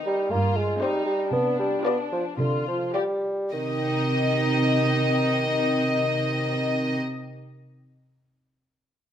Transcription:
Already playing: viola section C4 G4, violin section D#4 C5
0.06 bassoon G3
0.30 cello section G2, bassoon A#3, violin section F4
0.57 bassoon G#3
0.80 bassoon G3, viola section C4 G4, violin section D#4 C5
1.06 bassoon G3
1.32 cello section C3, bassoon B3, violin section D4
1.59 bassoon G3
1.84 bassoon B3, viola section F4 G4, violin section D5
2.13 bassoon F3
2.39 cello section C3, bassoon D3, violin section F4
2.68 bassoon F3
2.94 bassoon G3, viola section F4 G4, violin section G4 D5
3.52 cello section C3, bassoon D#3, viola section D#4, violin section G4 D#5

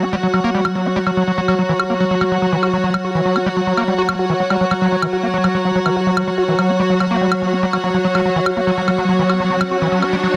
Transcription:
Already playing: ambient pad F#3, string section F#4 C#5 F#5
0.02 acid bass F#4
0.13 acid bass G3
0.23 acid bass F#3
0.34 acid bass F#3, high woodblock
0.44 acid bass A#3
0.54 acid bass G3
0.65 acid bass F#3, high woodblock
0.75 acid bass F#3
0.86 acid bass F#4
0.96 acid bass G3
1.07 acid bass F#3, high woodblock
1.17 acid bass F#3
1.27 acid bass F#3
1.38 acid bass F#3
1.48 acid bass F#3, high woodblock
1.59 acid bass F#3
1.69 acid bass E3
1.80 acid bass F#4, high woodblock
1.90 acid bass A#3
2.00 acid bass F#3
2.11 acid bass F#3
2.21 acid bass F#3, high woodblock
2.32 acid bass F#3
2.42 acid bass F#3
2.52 acid bass E3
2.63 acid bass F#4, high woodblock
2.73 acid bass F#3
2.84 acid bass F#3
2.94 acid bass F#3, high woodblock
3.04 acid bass F#4
3.15 acid bass E3
3.25 acid bass F#3
3.36 acid bass F#4, high woodblock
3.46 acid bass G3
3.57 acid bass F#3
3.67 acid bass F#3
3.77 acid bass A#3, high woodblock
3.88 acid bass G3
3.98 acid bass F#4
4.09 acid bass F#3, high woodblock
4.19 acid bass F#4
4.30 acid bass E3
4.40 acid bass F#3
4.50 acid bass G3, high woodblock
4.61 acid bass F#3
4.71 acid bass F#3, high woodblock
4.82 acid bass F#3
4.92 acid bass F#3
5.02 acid bass E3, high woodblock
5.13 acid bass F#4
5.23 acid bass A#3
5.34 acid bass F#3
5.44 acid bass F#3, high woodblock
5.55 acid bass F#3
5.65 acid bass F#3
5.75 acid bass F#3
5.86 acid bass E3, high woodblock
5.96 acid bass F#4
6.07 acid bass F#3
6.17 acid bass F#3, high woodblock
6.27 acid bass F#3
6.38 acid bass F#4
6.48 acid bass E3
6.59 acid bass F#3, high woodblock
6.69 acid bass F#4
6.80 acid bass G3
6.90 acid bass F#3
7.00 acid bass F#3, high woodblock
7.11 acid bass A#3
7.21 acid bass G3
7.32 acid bass F#3, high woodblock
7.42 acid bass F#3
7.52 acid bass F#4
7.63 acid bass G3
7.73 acid bass F#3, high woodblock
7.84 acid bass F#3
7.94 acid bass F#3, riser
8.05 acid bass F#3
8.15 acid bass F#3, high woodblock
8.25 acid bass F#3
8.36 acid bass E3
8.46 acid bass F#4, high woodblock
8.57 acid bass A#3
8.67 acid bass F#3
8.77 acid bass F#3
8.88 acid bass F#3, high woodblock
8.98 acid bass F#3
9.09 acid bass F#3
9.19 acid bass E3
9.30 acid bass F#4, high woodblock
9.40 acid bass F#3
9.50 acid bass F#3
9.61 acid bass F#3, high woodblock
9.71 acid bass F#4
9.82 acid bass E3
9.92 acid bass F#3
10.02 acid bass F#4, high woodblock
10.13 acid bass G3
10.23 acid bass F#3

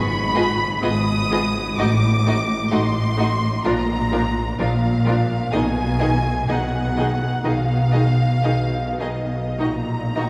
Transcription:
Already playing: double bass section G#1, cello section G#2, violin section B5
0.35 viola section B3 F4, violin section G#4 D#5
0.82 double bass section G#1, cello section G#2, viola section B3 F4, violin section G#4 D#5 D#6
1.31 viola section B3 F4, violin section G#4 D#5
1.78 double bass section A1, cello section A2, viola section A3 D#4, violin section F#4 D#5 D6
2.26 viola section A3 D#4, violin section F#4 D#5
2.71 double bass section A1, cello section A2, viola section A3 D#4, violin section F#4 D#5 C6
3.18 viola section A3 D#4, violin section F#4 D#5
3.64 double bass section A#1, cello section A#2, viola section F3 D4, violin section F4 A#4 A#5
4.12 viola section F3 D4, violin section F4 A#4
4.59 double bass section A#1, cello section A#2, viola section F3 D4, violin section F4 A#4 F5
5.05 viola section F3 D4, violin section F4 A#4
5.52 double bass section B1, cello section B2, viola section D#3 D#4, violin section G#4 D#5 G#5
6.00 viola section D#3 D#4, violin section G#4 D#5
6.48 double bass section B1, cello section B2, viola section D#3 D#4, violin section G#4 D#5 F#5
6.97 viola section D#3 D#4, violin section G#4 D#5
7.43 double bass section B1, cello section B2, viola section D#3 D#4, violin section G#4 D#5 F5
7.92 viola section D#3 D#4, violin section G#4 D#5
8.43 double bass section B1, cello section B2, viola section D#3 D#4, violin section G#4 D#5
9.00 viola section D#3 D#4, violin section G#4 D#5
9.59 double bass section A#1, cello section A#2, viola section D#3 D#4, violin section F#4 D#5 A#5
10.16 viola section D#3 D#4, violin section F#4 D#5

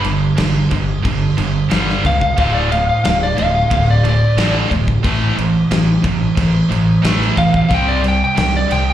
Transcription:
0.04 fingered electric bass G1, overdriven electric guitar G2 D3, crash
0.38 fingered electric bass G1, overdriven electric guitar G2 D3, snare, crash
0.71 fingered electric bass G1, overdriven electric guitar G2 D3, kick, crash
1.05 fingered electric bass G1, overdriven electric guitar G2 D3, kick, crash
1.37 fingered electric bass G1, overdriven electric guitar G2 D3, crash
1.71 fingered electric bass G1, overdriven electric guitar G2 D3 G3, snare, crash
1.89 snare
2.05 fingered electric bass C#2, overdriven electric guitar G2 D3, lead electric guitar F5, kick, crash
2.21 lead electric guitar F5, kick
2.38 fingered electric bass D1, overdriven electric guitar D2 A2 D3, lead electric guitar F5, kick, crash
2.54 lead electric guitar D5
2.72 overdriven electric guitar D2 A2, lead electric guitar F5, crash
2.89 lead electric guitar F5
3.04 fingered electric bass D1, overdriven electric guitar D2 A2, lead electric guitar F5, snare, crash
3.23 lead electric guitar D5
3.37 fingered electric bass D1, overdriven electric guitar D2 A2, lead electric guitar F5, crash
3.55 lead electric guitar F5
3.71 fingered electric bass D1, overdriven electric guitar D2 A2, lead electric guitar F5, kick, crash
3.91 lead electric guitar D5
4.05 overdriven electric guitar D2 A2, crash
4.09 lead electric guitar D5
4.37 fingered electric bass A1, overdriven electric guitar D2 A2 D3, snare, crash
4.71 fingered electric bass D1, overdriven electric guitar D2 A2, kick, crash
4.88 kick
5.04 fingered electric bass A1, overdriven electric guitar A2 E3 A3, kick, crash
5.38 fingered electric bass A1, overdriven electric guitar A2 E3, crash
5.71 fingered electric bass A1, overdriven electric guitar A2 E3, snare, crash
6.03 fingered electric bass A1, overdriven electric guitar A2 E3, kick, crash
6.37 fingered electric bass A1, overdriven electric guitar A2 E3, kick, crash
6.69 fingered electric bass A1, overdriven electric guitar A2 E3, crash
7.03 fingered electric bass A1, overdriven electric guitar A2 E3 A3, snare, crash
7.22 snare
7.36 fingered electric bass A1, overdriven electric guitar A2 E3, lead electric guitar F5, kick, crash
7.54 lead electric guitar F5, kick
7.69 fingered electric bass C2, overdriven electric guitar C3 G3 C4, kick, crash
7.74 lead electric guitar G5
7.88 lead electric guitar D5
8.02 overdriven electric guitar C3 G3, crash
8.08 lead electric guitar G5
8.24 lead electric guitar G5
8.35 fingered electric bass C2, overdriven electric guitar C3 G3, lead electric guitar G5, snare, crash
8.56 lead electric guitar D5
8.69 fingered electric bass C2, overdriven electric guitar C3 G3, lead electric guitar G5, crash
8.90 lead electric guitar G5

